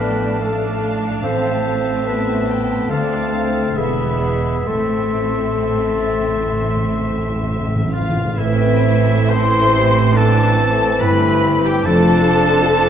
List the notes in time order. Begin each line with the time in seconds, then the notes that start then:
Already playing: A1 A2 F3 A3 B3 D4 F4 A4 B4 D5 F5 A5
0.00 G5
0.13 F4
0.40 A3 D4 A4 F5 A5
0.68 F4
0.95 A3
1.22 A1 A2 C4 C5 E5
1.51 A3
1.65 C4
1.78 E4
2.05 B3 A4 B4 E5
2.47 G5
2.61 A3
2.89 D2 D3 A3 C4 D4 A4 F5 A5
3.18 C4
3.33 C4
3.47 F4 A4
3.76 E1 E2 E3 G#3 B3 G#4 E5 B5
4.06 E4
4.35 E4 E5
4.67 A1 A2 A3 C4 A4 E5 C6
4.75 A2
4.83 A2
4.91 A2
4.98 A2 C4
5.08 A2
5.16 A2
5.23 A2
5.29 A2 E4
5.40 A2
5.47 A2
5.56 A2 E5
5.72 A2
5.80 A2
5.91 E4
5.96 A2
6.03 A2
6.12 A2
6.20 A2 C4
6.28 A2
6.36 A2
6.44 A2
6.52 A2 E3
6.62 A2
6.69 A2
6.76 A2
6.83 A2 C4
6.94 A2
7.01 A2
7.09 A2
7.18 A2
7.27 A2
7.34 A2
7.43 A2 E5
7.51 A2
7.59 A2
7.68 A2
7.76 A2 E4
7.85 A2
7.91 A2 F4 F5
8.01 A2
8.08 A2 C4
8.17 A2
8.25 A2
8.37 A1 A2 E3 A3 C4 E4 B4 E5
8.69 C4
9.29 E4 A4 C5 E5 C6
9.60 E4
9.72 G4
9.89 C4
10.16 E3 C4 D4 A4 A5
10.46 C4
10.58 C4 C5
10.75 E4
11.01 G1 G2 A3 E4 B4 E5 B5
11.31 E4
11.57 C4
11.64 G4 G5
11.84 F1 F2 F3 A3 D4 F4 A4 A5
12.28 F3
12.42 D5
12.68 D4 A4